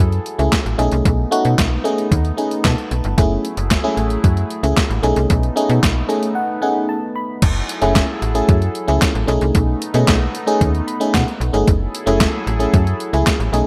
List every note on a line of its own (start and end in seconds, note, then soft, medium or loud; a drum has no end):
0.00 0.20 F#2 medium
0.00 0.77 F#3 medium
0.00 0.77 E4 medium
0.00 0.77 G#4 medium
0.00 0.77 A4 medium
0.12 closed hi-hat soft
0.26 closed hi-hat medium
0.39 0.49 C#2 medium
0.39 0.56 A3 medium
0.39 0.56 C#4 medium
0.39 0.56 E4 medium
0.39 0.56 G#4 medium
0.39 closed hi-hat soft
0.53 kick loud
0.53 snare loud
0.53 clap loud
0.53 closed hi-hat medium
0.66 0.76 A1 medium
0.66 closed hi-hat soft
0.78 0.89 B1 loud
0.78 1.21 A3 medium
0.78 3.15 A3 medium
0.78 3.15 B3 medium
0.78 1.21 C#4 medium
0.78 1.21 D#4 medium
0.78 3.15 D#4 medium
0.78 1.21 G#4 loud
0.78 closed hi-hat medium
0.92 1.02 C2 loud
0.92 closed hi-hat soft
1.05 1.26 B1 loud
1.05 kick loud
1.05 closed hi-hat medium
1.31 1.54 A3 loud
1.31 1.55 C#4 medium
1.31 1.55 D#4 medium
1.31 1.55 F#4 loud
1.31 closed hi-hat medium
1.45 1.55 B2 medium
1.45 closed hi-hat medium
1.58 1.79 B1 loud
1.58 kick loud
1.58 snare loud
1.58 clap medium
1.58 closed hi-hat loud
1.84 2.07 A3 loud
1.84 2.08 C#4 medium
1.84 2.08 D#4 medium
1.84 2.08 G#4 loud
1.84 closed hi-hat medium
1.98 closed hi-hat medium
2.12 2.32 D#2 loud
2.12 kick loud
2.12 closed hi-hat medium
2.25 closed hi-hat soft
2.37 2.72 A3 medium
2.37 2.72 C#4 medium
2.37 2.72 D#4 medium
2.37 2.72 G#4 medium
2.37 closed hi-hat medium
2.51 closed hi-hat medium
2.65 2.75 B2 loud
2.65 3.14 A5 medium
2.65 kick loud
2.65 snare loud
2.65 clap loud
2.65 closed hi-hat medium
2.78 closed hi-hat soft
2.91 3.02 B1 medium
2.91 closed hi-hat medium
3.04 3.15 G1 medium
3.04 closed hi-hat soft
3.17 3.38 F#1 loud
3.17 5.02 F#3 medium
3.17 5.02 A3 medium
3.17 3.46 A3 medium
3.17 3.46 C#4 medium
3.17 5.02 E4 medium
3.17 3.46 E4 medium
3.17 5.02 G#4 medium
3.17 3.47 G#4 medium
3.17 kick loud
3.17 closed hi-hat loud
3.45 closed hi-hat medium
3.57 3.78 F#1 medium
3.57 closed hi-hat medium
3.70 kick loud
3.70 snare loud
3.70 clap medium
3.70 closed hi-hat loud
3.84 4.18 A3 medium
3.84 4.18 C#4 medium
3.84 4.18 E4 medium
3.84 4.19 G#4 medium
3.97 4.18 A1 medium
3.97 closed hi-hat medium
4.10 closed hi-hat medium
4.24 4.44 F#2 medium
4.24 kick loud
4.24 closed hi-hat medium
4.37 closed hi-hat soft
4.50 closed hi-hat medium
4.63 4.74 C#2 medium
4.63 4.81 A3 medium
4.63 4.81 C#4 medium
4.63 4.81 E4 medium
4.63 4.81 G#4 medium
4.63 closed hi-hat medium
4.77 kick loud
4.77 snare loud
4.77 clap loud
4.77 closed hi-hat medium
4.90 5.00 A1 loud
4.90 closed hi-hat soft
5.03 5.14 B1 loud
5.03 5.46 A3 medium
5.03 7.40 A3 medium
5.03 7.40 B3 medium
5.03 5.46 C#4 medium
5.03 7.40 D#4 medium
5.03 5.46 D#4 medium
5.03 5.46 G#4 loud
5.03 closed hi-hat medium
5.16 5.27 C2 loud
5.16 closed hi-hat soft
5.30 5.50 B1 loud
5.30 kick loud
5.30 closed hi-hat medium
5.43 closed hi-hat soft
5.56 5.79 A3 medium
5.56 5.79 C#4 medium
5.56 5.79 D#4 medium
5.56 5.80 G#4 loud
5.56 closed hi-hat medium
5.70 5.80 B2 loud
5.70 closed hi-hat medium
5.83 6.04 B1 medium
5.83 kick loud
5.83 snare loud
5.83 clap loud
5.83 closed hi-hat loud
6.09 6.32 A3 medium
6.09 6.32 C#4 medium
6.09 6.32 D#4 medium
6.09 6.32 G#4 medium
6.09 6.34 D#5 medium
6.09 closed hi-hat medium
6.23 closed hi-hat medium
6.35 6.60 F#5 medium
6.62 6.97 A3 medium
6.62 6.97 C#4 medium
6.62 6.97 D#4 medium
6.62 6.97 G#4 medium
6.62 6.87 F#5 medium
6.89 7.14 A5 medium
7.16 7.40 B5 medium
7.42 7.63 F#1 loud
7.42 9.27 F#3 medium
7.42 9.27 E4 medium
7.42 9.27 G#4 medium
7.42 9.27 A4 medium
7.42 kick loud
7.42 closed hi-hat medium
7.42 crash loud
7.69 closed hi-hat medium
7.81 8.03 F#1 loud
7.81 8.05 A3 medium
7.81 8.05 C#4 medium
7.81 8.05 E4 medium
7.81 8.05 G#4 medium
7.81 closed hi-hat medium
7.95 kick loud
7.95 snare loud
7.95 clap medium
7.95 closed hi-hat loud
8.22 8.43 A1 medium
8.22 closed hi-hat medium
8.35 8.58 A3 medium
8.35 8.58 C#4 medium
8.35 8.58 E4 medium
8.35 8.58 G#4 medium
8.35 closed hi-hat medium
8.49 8.69 F#2 medium
8.49 kick loud
8.49 closed hi-hat medium
8.62 closed hi-hat soft
8.75 closed hi-hat medium
8.88 8.99 C#2 medium
8.88 9.11 A3 medium
8.88 9.11 C#4 medium
8.88 9.11 E4 medium
8.88 9.11 G#4 medium
8.88 closed hi-hat medium
9.02 kick loud
9.02 snare loud
9.02 clap loud
9.02 closed hi-hat medium
9.15 9.25 A1 medium
9.15 closed hi-hat soft
9.27 9.39 B1 loud
9.27 9.81 A3 medium
9.27 11.65 A3 medium
9.27 11.65 B3 medium
9.27 9.81 C#4 medium
9.27 9.81 D#4 medium
9.27 11.65 D#4 medium
9.27 9.81 G#4 loud
9.27 closed hi-hat medium
9.41 9.52 C2 loud
9.41 closed hi-hat soft
9.55 9.75 B1 loud
9.55 kick loud
9.55 closed hi-hat loud
9.82 closed hi-hat medium
9.94 10.05 B2 loud
9.94 10.17 A3 medium
9.94 10.17 C#4 medium
9.94 10.17 D#4 medium
9.94 10.18 G#4 medium
9.94 closed hi-hat medium
10.07 10.28 B1 medium
10.07 kick loud
10.07 snare loud
10.07 clap medium
10.07 closed hi-hat loud
10.35 closed hi-hat medium
10.47 10.70 A3 medium
10.47 10.70 C#4 medium
10.47 10.70 D#4 medium
10.47 10.71 G#4 loud
10.47 closed hi-hat medium
10.61 10.81 D#2 loud
10.61 kick loud
10.61 closed hi-hat medium
10.75 closed hi-hat soft
10.87 11.12 B5 medium
10.87 closed hi-hat medium
11.00 11.23 A3 medium
11.00 11.24 C#4 medium
11.00 11.24 D#4 medium
11.00 11.24 G#4 medium
11.00 closed hi-hat medium
11.14 11.25 B2 loud
11.14 11.63 F#5 medium
11.14 kick loud
11.14 snare loud
11.14 clap medium
11.14 closed hi-hat medium
11.28 closed hi-hat soft
11.40 11.51 B1 loud
11.40 closed hi-hat medium
11.53 11.64 G1 loud
11.53 11.67 A3 medium
11.53 11.67 C#4 medium
11.53 11.67 D#4 medium
11.53 11.67 G#4 medium
11.53 closed hi-hat soft
11.67 11.88 F#1 loud
11.67 13.51 F#3 medium
11.67 13.51 E4 medium
11.67 13.51 G#4 medium
11.67 13.51 A4 medium
11.67 kick loud
11.67 closed hi-hat loud
11.95 closed hi-hat medium
12.06 12.27 F#1 loud
12.06 12.30 A3 loud
12.06 12.30 C#4 medium
12.06 12.30 E4 medium
12.06 12.30 G#4 loud
12.06 closed hi-hat medium
12.20 kick loud
12.20 snare loud
12.20 clap loud
12.20 closed hi-hat loud
12.47 12.67 A1 medium
12.47 closed hi-hat medium
12.59 12.83 A3 medium
12.59 12.83 C#4 medium
12.59 12.83 E4 medium
12.59 12.83 G#4 medium
12.59 closed hi-hat medium
12.74 12.94 F#2 loud
12.74 kick loud
12.74 closed hi-hat medium
12.87 closed hi-hat soft
13.00 closed hi-hat medium
13.13 13.24 C#2 medium
13.13 13.36 A3 medium
13.13 13.36 C#4 medium
13.13 13.36 E4 medium
13.13 13.37 G#4 medium
13.13 closed hi-hat soft
13.27 kick loud
13.27 snare loud
13.27 clap loud
13.27 closed hi-hat medium
13.40 13.50 A1 medium
13.40 closed hi-hat soft
13.53 13.63 B1 medium
13.53 13.67 A3 medium
13.53 13.67 B3 medium
13.53 13.67 C#4 medium
13.53 13.67 D#4 medium
13.53 13.67 G#4 loud
13.53 closed hi-hat medium